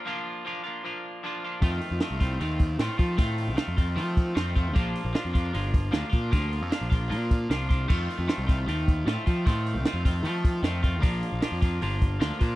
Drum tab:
CC |--------|--------|--------|--------|
HH |--------|oooooooo|oooooooo|oooooooo|
SD |--------|--o---o-|--o---o-|--o---o-|
BD |--------|o--o-o-o|o--o-o-o|o--o-o-o|

CC |--------|x-------|--------|--------|
HH |oooooooo|-ooooooo|oooooooo|oooooooo|
SD |--o---o-|--o---o-|--o---o-|--o---o-|
BD |o--o-o-o|o--o-o-o|o--o-o-o|o--o-o-o|